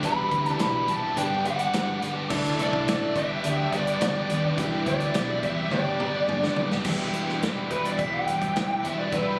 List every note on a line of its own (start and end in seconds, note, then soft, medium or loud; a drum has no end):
0.00 0.25 E1 loud
0.00 0.58 E2 loud
0.00 0.58 B2 loud
0.00 0.30 E3 loud
0.00 0.31 G3 loud
0.00 0.88 D4 loud
0.00 0.23 E4 medium
0.00 2.27 G4 medium
0.00 0.23 G4 medium
0.00 2.27 B4 medium
0.00 0.23 B4 medium
0.00 0.23 D5 medium
0.00 1.15 E5 medium
0.00 6.81 D6 medium
0.00 kick loud
0.00 closed hi-hat medium
0.05 0.32 E4 loud
0.05 0.32 G4 loud
0.05 0.60 B5 loud
0.30 0.54 D2 medium
0.30 0.47 E3 medium
0.30 0.46 G3 medium
0.30 0.41 E4 medium
0.30 0.45 E4 medium
0.30 0.41 G4 medium
0.30 0.44 G4 medium
0.30 0.42 B4 medium
0.30 0.42 D5 medium
0.30 kick medium
0.30 closed hi-hat medium
0.45 0.59 E3 medium
0.45 0.59 G3 medium
0.45 1.17 E4 medium
0.45 0.60 E4 medium
0.45 0.60 G4 medium
0.45 1.15 G4 medium
0.45 1.16 B4 medium
0.45 1.16 D5 medium
0.45 closed hi-hat medium
0.59 0.82 B1 medium
0.59 1.02 E2 loud
0.59 1.02 B2 loud
0.59 0.76 E3 loud
0.59 0.75 G3 loud
0.59 0.74 E4 loud
0.59 0.73 G4 loud
0.59 0.90 B5 medium
0.59 snare loud
0.59 closed hi-hat loud
0.74 1.04 E3 medium
0.74 1.03 G3 medium
0.74 1.03 E4 medium
0.74 1.01 G4 medium
0.88 1.10 E1 medium
0.88 1.17 E3 soft
0.88 1.16 G3 soft
0.88 1.17 D4 medium
0.88 1.17 G4 medium
0.88 1.18 A5 medium
0.88 kick medium
0.88 closed hi-hat medium
1.03 1.17 E3 medium
1.03 1.16 G3 medium
1.03 1.16 E4 medium
1.03 1.15 G4 medium
1.16 1.39 G1 loud
1.16 1.59 G2 loud
1.16 1.60 D3 loud
1.16 1.32 G3 loud
1.16 1.31 B3 loud
1.16 2.08 D4 medium
1.16 1.31 D4 loud
1.16 2.07 G4 medium
1.16 1.29 G4 loud
1.16 2.08 B4 medium
1.16 2.08 D5 medium
1.16 2.29 D5 medium
1.16 1.46 G5 medium
1.16 closed hi-hat loud
1.30 1.43 G3 medium
1.30 1.44 B3 medium
1.30 1.46 D4 medium
1.30 1.46 G4 medium
1.44 1.67 G1 medium
1.44 1.60 G3 medium
1.44 1.60 B3 medium
1.44 1.59 D4 medium
1.44 1.58 G4 medium
1.44 1.99 F#5 medium
1.44 closed hi-hat medium
1.59 1.73 G3 medium
1.59 1.73 B3 medium
1.59 1.75 D4 medium
1.59 1.75 G4 medium
1.59 closed hi-hat medium
1.73 1.96 G1 medium
1.73 2.28 G2 loud
1.73 2.28 D3 medium
1.73 2.00 G3 loud
1.73 2.01 B3 medium
1.73 2.03 D4 loud
1.73 2.03 G4 loud
1.73 snare loud
1.73 closed hi-hat loud
2.01 2.24 G1 medium
2.01 2.17 G3 medium
2.01 2.16 B3 medium
2.01 2.16 D4 medium
2.01 2.14 G4 medium
2.01 snare soft
2.01 closed hi-hat medium
2.16 2.29 G3 medium
2.16 2.29 B3 medium
2.16 2.31 D4 medium
2.16 2.28 G4 medium
2.29 2.53 D2 loud
2.29 2.56 D3 loud
2.29 2.58 A3 loud
2.29 2.51 D4 loud
2.29 2.51 E4 medium
2.29 2.59 E4 loud
2.29 3.15 A4 medium
2.29 2.51 A4 medium
2.29 2.60 A4 loud
2.29 4.55 D5 medium
2.29 2.51 D5 loud
2.29 3.14 E5 medium
2.29 kick loud
2.29 crash loud
2.45 closed hi-hat soft
2.58 2.81 C2 medium
2.58 2.85 D3 medium
2.58 2.74 A3 medium
2.58 2.69 D4 medium
2.58 2.69 E4 medium
2.58 2.73 E4 medium
2.58 2.69 A4 medium
2.58 2.71 A4 medium
2.58 2.69 D5 medium
2.58 closed hi-hat medium
2.62 3.17 D5 loud
2.72 2.87 A3 medium
2.72 3.14 D4 medium
2.72 3.16 E4 medium
2.72 2.87 E4 medium
2.72 2.88 A4 medium
2.72 3.16 A4 medium
2.72 3.15 D5 medium
2.72 kick loud
2.87 3.09 A1 medium
2.87 3.14 D3 medium
2.87 3.03 A3 loud
2.87 3.01 E4 loud
2.87 3.00 A4 loud
2.87 snare loud
2.87 closed hi-hat loud
3.01 3.15 A3 medium
3.01 3.15 E4 medium
3.01 3.14 A4 medium
3.15 3.38 G1 loud
3.15 3.58 G2 medium
3.15 3.58 D3 loud
3.15 3.32 G3 loud
3.15 3.31 B3 loud
3.15 4.07 D4 medium
3.15 3.30 D4 loud
3.15 4.07 G4 medium
3.15 3.29 G4 loud
3.15 6.82 B4 medium
3.15 4.07 B4 medium
3.15 4.07 D5 medium
3.15 3.69 E5 loud
3.15 6.82 G5 medium
3.15 kick loud
3.15 closed hi-hat medium
3.29 3.60 G3 medium
3.29 3.59 B3 medium
3.29 3.58 D4 medium
3.29 3.57 G4 medium
3.44 3.66 D2 loud
3.44 3.73 G2 medium
3.44 3.73 D3 medium
3.44 3.73 G3 medium
3.44 3.73 B3 medium
3.44 3.72 D4 medium
3.44 3.71 G4 medium
3.44 closed hi-hat loud
3.57 3.71 G3 medium
3.57 3.72 B3 medium
3.57 3.73 D4 medium
3.57 3.74 G4 medium
3.71 3.95 G1 medium
3.71 3.88 G3 medium
3.71 3.88 B3 medium
3.71 3.87 D4 medium
3.71 3.86 G4 medium
3.71 4.00 D5 loud
3.71 kick medium
3.71 closed hi-hat medium
3.86 4.01 G3 medium
3.86 4.01 B3 medium
3.86 4.01 D4 medium
3.86 4.02 G4 medium
3.86 closed hi-hat medium
3.99 4.23 G1 medium
3.99 4.55 G2 medium
3.99 4.56 D3 medium
3.99 4.28 G3 loud
3.99 4.29 B3 loud
3.99 4.30 D4 loud
3.99 4.31 G4 loud
3.99 4.41 D5 medium
3.99 snare loud
3.99 closed hi-hat loud
4.28 4.52 D#2 medium
4.28 4.45 G3 medium
4.28 4.44 B3 medium
4.28 4.44 D4 medium
4.28 4.42 G4 medium
4.28 closed hi-hat medium
4.43 4.57 G3 medium
4.43 4.58 B3 medium
4.43 4.58 D4 medium
4.43 4.59 G4 medium
4.56 4.80 E1 loud
4.56 5.13 E2 loud
4.56 5.13 B2 loud
4.56 4.84 E3 loud
4.56 4.85 G3 loud
4.56 5.43 D4 loud
4.56 4.77 E4 medium
4.56 4.86 E4 loud
4.56 4.78 G4 medium
4.56 4.87 G4 loud
4.56 4.78 B4 medium
4.56 4.78 D5 loud
4.56 5.70 E5 medium
4.56 kick loud
4.56 closed hi-hat loud
4.85 5.08 D2 medium
4.85 5.01 E3 medium
4.85 5.00 G3 medium
4.85 4.96 E4 medium
4.85 5.00 E4 medium
4.85 4.96 G4 medium
4.85 4.98 G4 medium
4.85 4.96 B4 medium
4.85 4.97 D5 medium
4.85 5.40 D5 loud
4.85 kick medium
4.85 closed hi-hat medium
4.99 5.14 E3 medium
4.99 5.15 G3 medium
4.99 5.71 E4 medium
4.99 5.15 E4 medium
4.99 5.16 G4 medium
4.99 5.70 G4 medium
4.99 5.70 B4 medium
4.99 5.71 D5 medium
4.99 closed hi-hat medium
5.14 5.37 B1 medium
5.14 5.57 E2 loud
5.14 5.57 B2 loud
5.14 5.30 E3 loud
5.14 5.29 G3 loud
5.14 5.28 E4 loud
5.14 5.27 G4 loud
5.14 snare loud
5.14 closed hi-hat loud
5.28 5.58 E3 medium
5.28 5.57 G3 medium
5.28 5.56 E4 medium
5.28 5.55 G4 medium
5.43 5.65 E1 medium
5.43 5.72 E3 soft
5.43 5.71 G3 soft
5.43 5.72 D4 soft
5.43 5.72 G4 soft
5.43 5.72 E5 loud
5.43 kick medium
5.43 closed hi-hat medium
5.56 5.71 E3 medium
5.56 5.70 G3 medium
5.56 5.70 E4 medium
5.56 5.69 G4 medium
5.70 5.93 G1 loud
5.70 6.14 G2 loud
5.70 6.14 D3 medium
5.70 5.87 G3 loud
5.70 5.87 B3 loud
5.70 6.62 D4 medium
5.70 5.86 D4 loud
5.70 6.62 G4 medium
5.70 5.85 G4 loud
5.70 6.63 B4 medium
5.70 6.63 D5 medium
5.70 6.85 D5 medium
5.70 6.53 D5 medium
5.70 high tom medium
5.86 5.99 G3 medium
5.86 6.00 B3 medium
5.86 6.01 D4 medium
5.86 6.02 G4 medium
5.99 6.22 G1 medium
5.99 6.15 G3 medium
5.99 6.15 B3 medium
5.99 6.14 D4 medium
5.99 6.13 G4 medium
5.99 mid tom medium
6.14 6.28 G3 medium
6.14 6.28 B3 medium
6.14 6.29 D4 medium
6.14 6.29 G4 medium
6.27 6.50 G1 medium
6.27 6.83 G2 medium
6.27 6.84 D3 medium
6.27 6.55 G3 loud
6.27 6.56 B3 loud
6.27 6.57 D4 loud
6.27 6.58 G4 medium
6.27 mid tom medium
6.43 snare medium
6.56 6.78 F#1 medium
6.56 6.72 G3 medium
6.56 6.71 B3 medium
6.56 6.71 D4 medium
6.56 6.69 G4 medium
6.56 floor tom loud
6.71 6.85 G3 medium
6.71 6.84 B3 medium
6.71 6.84 D4 medium
6.71 6.83 G4 medium
6.71 snare medium
6.84 7.12 E1 medium
6.84 8.82 E2 medium
6.84 8.83 B2 medium
6.84 8.83 E3 loud
6.84 8.84 G3 medium
6.84 8.82 B3 medium
6.84 7.43 D4 medium
6.84 8.82 E4 loud
6.84 7.43 G4 medium
6.84 9.39 B4 medium
6.84 9.39 E5 medium
6.84 9.39 G5 medium
6.84 9.10 D6 medium
6.84 kick loud
6.84 crash loud
7.13 7.41 E1 medium
7.13 closed hi-hat medium
7.29 snare soft
7.41 7.70 E1 medium
7.41 7.70 E3 medium
7.41 7.70 G3 medium
7.41 7.69 D4 medium
7.41 7.68 G4 medium
7.41 snare loud
7.41 closed hi-hat medium
7.69 7.98 E1 medium
7.69 7.97 E3 soft
7.69 7.98 G3 soft
7.69 7.98 D4 soft
7.69 7.98 G4 medium
7.69 7.85 B4 medium
7.69 closed hi-hat medium
7.85 7.99 D5 medium
7.85 closed hi-hat medium
7.97 8.27 E1 loud
7.97 8.27 E2 medium
7.97 8.27 B2 medium
7.97 8.27 E3 medium
7.97 8.27 G3 medium
7.97 8.26 D4 medium
7.97 8.25 G4 medium
7.97 8.13 E5 medium
7.97 kick loud
7.97 closed hi-hat medium
8.14 8.69 G5 medium
8.27 8.55 E1 medium
8.27 8.85 E3 soft
8.27 8.85 G3 soft
8.27 8.85 D4 soft
8.27 8.84 G4 soft
8.27 closed hi-hat medium
8.42 kick medium
8.42 closed hi-hat medium
8.56 8.83 E1 medium
8.56 snare loud
8.56 closed hi-hat medium
8.71 8.85 G5 medium
8.83 9.12 E1 medium
8.83 9.11 E2 medium
8.83 9.11 B2 medium
8.83 9.12 E3 medium
8.83 9.13 G3 medium
8.83 9.11 B3 medium
8.83 9.13 D4 soft
8.83 9.11 E4 medium
8.83 9.13 G4 soft
8.83 8.98 E5 medium
8.83 closed hi-hat medium
8.99 9.13 D5 medium
9.12 9.39 E1 loud
9.12 9.39 E2 loud
9.12 9.39 B2 medium
9.12 9.39 E3 medium
9.12 9.39 G3 loud
9.12 9.39 B3 loud
9.12 9.39 D4 medium
9.12 9.39 E4 medium
9.12 9.39 G4 medium
9.12 9.39 B4 medium
9.12 9.39 E6 medium
9.12 kick loud
9.12 closed hi-hat medium